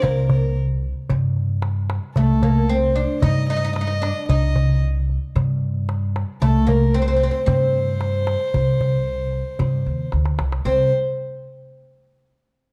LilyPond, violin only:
\new Staff \with { instrumentName = "Violin" } { \time 4/4 \key c \minor \tempo 4 = 113 bes'8 bes'8 r2. | a'4 c''4 ees''8 ees''8 ees''4 | ees''4 r2. | a'8 bes'8 c''4 c''2~ |
c''2. r4 | c''8 r2. r8 | }